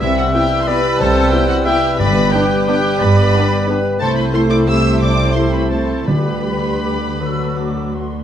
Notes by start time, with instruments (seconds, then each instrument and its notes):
Already playing: harp B3 E4 G4 B4
0.00 double bass section C2, harp C3, cello section C3, bassoon G3, violin section E4 E5, cor anglais B4, clarinet E5, flute section E6
0.16 harp B3, violin section F#4 F#5
0.34 viola section B3 E4, french horn section B3 E4, harp E4, violin section G4 G5
0.52 harp G4
0.61 violin section C6
0.67 viola section B3 E4, french horn section B3 E4, violin section B4 B5, harp B4, clarinet D5
0.84 harp G4
0.98 double bass section C2, harp C3, cello section C3, violin section A4 A5, clarinet C5
1.16 harp B3
1.30 french horn section B3 E4, viola section B3 E4, harp E4, violin section G4 G5
1.48 violin section F#4 F#5, harp G4
1.65 viola section B3 E4, french horn section B3 E4, violin section G4 G5, harp B4, clarinet E5
1.84 harp G4
1.98 double bass section G1, harp G2, timpani G2, cello section G2, bassoon G3, cor anglais B4, violin section B4 B5, clarinet D5, flute section D6
2.16 harp B3
2.31 french horn section B3 D4, viola section B3 D4, harp D4, violin section G4 G5, clarinet B4
2.50 harp G4
2.66 viola section B3 D4, french horn section B3 D4, violin section G4 G5, harp B4
2.85 harp G4
2.99 double bass section G1, cello section G2, harp G2, violin section B4 B5, clarinet D5
3.17 harp B3
3.33 viola section B3 D4, french horn section B3 D4, harp D4
3.51 harp G4
3.68 french horn section B3 D4, viola section B3 D4, clarinet B4, harp B4
3.85 harp G4
3.99 double bass section C2, cello section C3, harp C3, bassoon A3, viola section A3 E4, violin section A4 A5, cor anglais C5, clarinet C5, flute section C6
4.16 harp C4, violin section B4 B5
4.33 viola section A3 E4, french horn section A3 E4, harp E4, clarinet A4, violin section C5 C6
4.50 harp A4, violin section D5 D6
4.68 viola section A3 E4, french horn section A3 E4, clarinet G4, harp C5, violin section E5 E6
4.86 harp A4
5.01 harp C3, violin section D5 D6
5.18 harp C4
5.34 viola section A3 E4, french horn section A3 E4, harp E4, clarinet A4, violin section C5 C6
5.52 harp A4, violin section B4 B5
5.70 viola section A3 E4, french horn section A3 E4, violin section A4 A5, clarinet C5, harp C5
5.90 harp A4
6.07 double bass section D2, timpani D3, cello section D3, harp D3, bassoon G3, viola section G3 G4, cor anglais B4, violin section B4 B5, clarinet B4, flute section D6
6.27 harp D4
6.45 french horn section G3 G4, harp G4, flute section B5
6.65 harp B4, flute section C6
6.84 french horn section G3 G4, harp D5, flute section D6
7.03 harp B4
7.20 harp D3, bassoon F#3, viola section A3 F#4, cor anglais A4, flute section E6
7.39 harp D4
7.57 french horn section A3 F#4, harp F#4, flute section D6
7.76 harp A4
7.94 french horn section A3 F#4, harp D5, flute section C6
8.13 harp A4